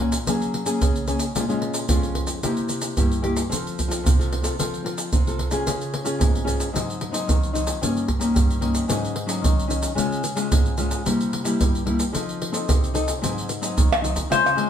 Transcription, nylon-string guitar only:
0.00 0.25 A#2 medium
0.00 0.16 A#3 medium
0.00 0.16 C#4 medium
0.00 0.17 F#4 medium
0.26 0.78 F#3 medium
0.26 0.63 A#3 soft
0.26 0.64 C#4 medium
0.26 0.64 G#4 medium
0.65 1.03 A#3 medium
0.65 1.03 C#4 medium
0.65 1.03 G#4 medium
0.81 1.33 C#3 medium
1.08 1.24 A#3 soft
1.08 1.24 C#4 soft
1.08 1.24 G#4 medium
1.35 1.86 A#2 medium
1.35 1.43 G#3 medium
1.35 1.43 C#4 medium
1.35 1.44 F4 medium
1.49 1.85 G#3 medium
1.49 1.85 C#4 medium
1.49 1.85 F4 medium
1.89 2.40 F2 medium
1.89 2.39 G#3 medium
1.89 2.39 C#4 medium
1.89 2.39 F4 medium
2.44 2.94 C3 medium
2.44 2.93 A#3 medium
2.44 2.93 E4 medium
2.44 2.93 G4 medium
2.97 3.48 G2 medium
2.97 3.19 A#3 medium
2.97 3.20 E4 soft
2.97 3.20 G4 medium
3.22 3.40 A#3 soft
3.22 3.40 E4 medium
3.22 3.41 G4 medium
3.49 4.01 F3 medium
3.49 3.75 C4 medium
3.49 3.75 F4 soft
3.49 3.76 A4 medium
3.88 4.12 C4 medium
3.88 4.12 F4 medium
3.88 4.12 A4 medium
4.04 4.55 C3 medium
4.19 4.41 C4 medium
4.19 4.41 F4 medium
4.19 4.41 A4 medium
4.43 4.53 C4 medium
4.43 4.53 F4 medium
4.43 4.53 A4 medium
4.59 5.10 F3 medium
4.59 4.81 C4 medium
4.59 4.81 F4 soft
4.59 4.82 A4 medium
4.84 5.10 C4 soft
4.84 5.10 F4 soft
4.84 5.11 A4 medium
5.13 5.64 C3 medium
5.27 5.49 C4 medium
5.27 5.49 F4 soft
5.27 5.49 A4 medium
5.51 6.01 C#4 medium
5.51 6.02 F4 medium
5.51 6.02 G#4 medium
5.67 6.17 C#3 medium
6.04 6.41 C#4 medium
6.04 6.42 F4 medium
6.04 6.42 G#4 medium
6.19 6.70 G#2 medium
6.45 6.68 C#4 medium
6.45 6.68 F4 medium
6.45 6.69 G#4 medium
6.73 7.25 G#2 medium
6.73 7.09 F#3 soft
6.73 7.10 C4 medium
6.73 7.10 D#4 medium
7.11 7.49 F#3 medium
7.11 7.49 C4 soft
7.11 7.50 D#4 medium
7.27 7.79 D#3 medium
7.53 7.76 F#3 medium
7.53 7.76 C4 soft
7.53 7.77 D#4 medium
7.81 8.33 G2 medium
7.81 8.07 D#3 medium
7.81 8.07 A#3 medium
7.81 8.07 C#4 medium
8.19 8.57 D#3 medium
8.19 8.57 A#3 medium
8.19 8.57 C#4 medium
8.34 8.86 G2 medium
8.61 8.84 D#3 medium
8.61 8.84 A#3 medium
8.61 8.85 C#4 medium
8.88 9.40 G#2 medium
8.88 9.14 F#3 soft
8.88 9.14 C#4 medium
8.88 9.15 D#4 medium
9.26 9.64 F#3 medium
9.26 9.64 C#4 soft
9.26 9.65 D#4 medium
9.41 9.94 D#3 medium
9.67 9.92 F#3 soft
9.67 9.92 C#4 medium
9.67 9.92 D#4 medium
9.95 10.48 C#3 medium
9.95 10.22 G#3 medium
9.95 10.22 C#4 medium
9.95 10.22 F4 medium
10.36 10.73 G#3 medium
10.36 10.73 C#4 medium
10.36 10.74 F4 medium
10.52 11.03 G#2 medium
10.78 11.01 G#3 medium
10.78 11.01 C#4 medium
10.78 11.01 F4 medium
11.05 11.57 C3 medium
11.05 11.42 G3 medium
11.05 11.42 A#3 medium
11.05 11.42 E4 medium
11.44 11.82 G3 medium
11.44 11.82 A#3 medium
11.44 11.82 E4 medium
11.60 12.11 G2 medium
11.86 12.02 G3 soft
11.86 12.03 A#3 soft
11.86 12.02 E4 medium
12.12 12.65 F3 medium
12.12 12.50 C4 medium
12.12 12.50 D#4 medium
12.12 12.50 A4 medium
12.52 12.90 C4 medium
12.52 12.90 D#4 medium
12.52 12.90 A4 medium
12.68 13.20 C3 medium
12.94 13.11 C4 medium
12.94 13.11 D#4 medium
12.94 13.11 A4 medium
13.21 13.74 G#2 medium
13.21 13.47 F#3 medium
13.21 13.47 C4 medium
13.21 13.48 D#4 medium
13.61 13.98 F#3 medium
13.61 13.99 C4 medium
13.61 13.99 D#4 medium
13.77 14.28 D#3 medium
14.01 14.18 F#3 soft
14.01 14.19 C4 soft
14.01 14.19 D#4 medium
14.30 14.70 C#3 medium
14.30 14.53 G#3 medium
14.30 14.53 C4 medium
14.30 14.54 F4 medium
14.56 14.70 G#3 medium
14.56 14.70 C4 medium
14.56 14.70 F4 medium

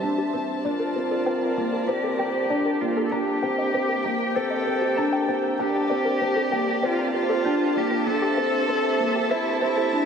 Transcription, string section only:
0.00 0.60 G4 medium
0.00 0.62 C5 medium
0.00 0.62 E5 medium
0.00 3.08 A5 medium
0.64 10.05 G4 medium
0.64 3.09 A#4 medium
0.64 3.09 D5 medium
3.12 8.03 A#3 medium
3.12 5.57 G5 medium
5.59 8.04 D5 medium
5.59 10.05 A5 medium
8.06 10.05 C5 medium
8.06 10.05 E5 medium

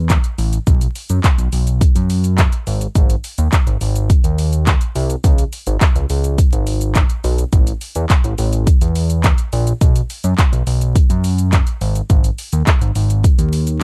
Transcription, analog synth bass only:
0.00 0.18 E2 medium
0.38 0.59 A1 loud
0.67 0.87 B1 loud
1.10 1.20 F#2 loud
1.38 1.49 B1 loud
1.53 1.83 B1 medium
1.96 2.46 F#2 medium
2.67 2.87 G#1 loud
2.95 3.16 G#1 loud
3.38 3.49 D#2 medium
3.67 3.77 G#1 medium
3.81 4.12 G#1 medium
4.24 4.75 D#2 medium
4.95 5.16 C2 loud
5.24 5.44 C#2 loud
5.67 5.77 G#1 medium
5.95 6.06 C#2 medium
6.10 6.40 C#2 medium
6.53 7.03 G#1 medium
7.24 7.44 B1 loud
7.53 7.73 A1 loud
7.96 8.06 E2 medium
8.24 8.34 A1 medium
8.39 8.69 A1 loud
8.81 9.32 E2 medium
9.53 9.73 A#1 loud
9.81 10.02 B1 loud
10.24 10.34 F#2 medium
10.53 10.63 B1 medium
10.67 10.97 B1 loud
11.10 11.61 F#2 medium
11.81 12.02 G#1 loud
12.10 12.30 G#1 loud
12.53 12.63 D#2 medium
12.81 12.91 G#1 loud
12.96 13.26 G#1 medium
13.39 13.83 D#2 medium

